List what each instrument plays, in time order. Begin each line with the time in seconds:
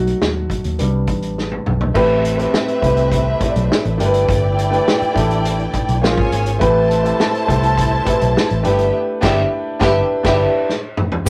Already playing: fingered electric bass B1, grand piano F#3 A3 C4 D#4 F#4
0.07 closed hi-hat
0.22 fingered electric bass D#2, snare
0.50 kick, closed hi-hat
0.64 fingered electric bass D#2, closed hi-hat
0.79 fingered electric bass C2, grand piano G3 B3 C4 D4, closed hi-hat
1.07 fingered electric bass A1, kick, closed hi-hat
1.23 closed hi-hat
1.38 snare
1.52 high tom
1.66 fingered electric bass B1, mid tom
1.81 floor tom
1.94 fingered electric bass A1, grand piano A3 C4 E4 G4 B4, string section C4 B4 E5, kick, crash
2.25 closed hi-hat
2.37 grand piano A3 C4 E4 G4 B4, closed hi-hat
2.54 snare
2.68 closed hi-hat
2.81 fingered electric bass C2, grand piano A3 C4 E4 G4 B4, kick, closed hi-hat
2.97 closed hi-hat
3.12 kick, closed hi-hat
3.40 grand piano A3 C4 E4 G4 C#5, muted fingered electric bass stroke, kick, closed hi-hat
3.48 grand piano D5
3.56 fingered electric bass B1, closed hi-hat
3.72 snare
3.85 fingered electric bass A1, closed hi-hat
3.97 fingered electric bass G1, grand piano A3 D4 E4 G4 A#4, string section E4 D5 G5, closed hi-hat
4.06 grand piano B4
4.14 closed hi-hat
4.29 fingered electric bass G1, kick, closed hi-hat
4.59 closed hi-hat
4.70 grand piano A3 D4 E4 G4 B4, closed hi-hat
4.88 snare
5.02 muted fingered electric bass stroke, closed hi-hat
5.13 fingered electric bass A1, grand piano A3 D4 E4 G4 A4, kick, snare, closed hi-hat
5.31 closed hi-hat
5.45 closed hi-hat
5.59 closed hi-hat
5.74 muted fingered electric bass stroke, kick, closed hi-hat
5.89 fingered electric bass B1, closed hi-hat
6.01 fingered electric bass A#1, grand piano A#3 C#4 F4 G#4 C5, string section F4 C#5 G#5, snare
6.18 fingered electric bass G#1, kick
6.32 fingered electric bass G#1, closed hi-hat
6.46 closed hi-hat
6.59 fingered electric bass A1, grand piano A3 C4 E4 G4 B4, string section E4 C5 A5, kick, closed hi-hat
6.91 closed hi-hat
7.03 grand piano A3 C4 E4 G4 A4, closed hi-hat
7.20 snare
7.35 closed hi-hat
7.46 fingered electric bass C2, grand piano A3 C4 E4 G4 A4, kick, closed hi-hat
7.63 closed hi-hat
7.78 kick, closed hi-hat
8.04 grand piano A3 C4 E4 G4 B4, muted fingered electric bass stroke, kick, closed hi-hat
8.21 fingered electric bass B1, closed hi-hat
8.37 snare
8.50 fingered electric bass A1, closed hi-hat
8.63 fingered electric bass G1, grand piano A3 D4 E4 G4 B4, string section B3 G4 E5, closed hi-hat
8.79 closed hi-hat
9.21 fingered electric bass G1, string section B3 G4 E5, grand piano D4 E4 G4 D5, kick, snare, crash
9.79 fingered electric bass G1, string section B3 G4 E5, grand piano D4 E4 G4 B4, kick, snare
10.23 fingered electric bass G1, string section B3 G4 E5, grand piano D4 E4 G4 B4, kick, snare, crash
10.69 snare
10.97 mid tom
11.12 floor tom
11.25 grand piano G4, string section F#5